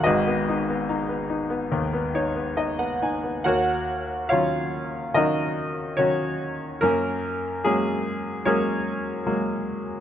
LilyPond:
<<
  \new Staff \with { instrumentName = "Grand piano" } { \time 4/4 \key ees \minor \tempo 4 = 72 << { r2 r8 des''8 ees''16 ges''16 aes''8 | r1 | r1 | } \\ { <ges' ces'' ees''>2. r4 | <ges' bes' des'' ges''>4 <f' des'' f''>4 <ees' ges' bes' ees''>4 <des' ges' des''>4 | <bes des' bes'>4 <des' aes'>4 <des' aes' bes' des''>4. r8 | } >> }
  \new Staff \with { instrumentName = "Grand piano" } { \time 4/4 \key ees \minor <aes,, aes,>16 ces'16 ees'16 ces'16 ees'16 ces'16 ees'16 ces'16 <ees, ees>16 ces'16 ees'16 ces'16 ees'16 ces'16 ees'16 ces'16 | ees,4 <ees ges des'>4 <ees ges des'>4 <ees ges>4 | ges,4 <ges aes bes>4 <ges aes bes>4 <ges aes bes>4 | }
>>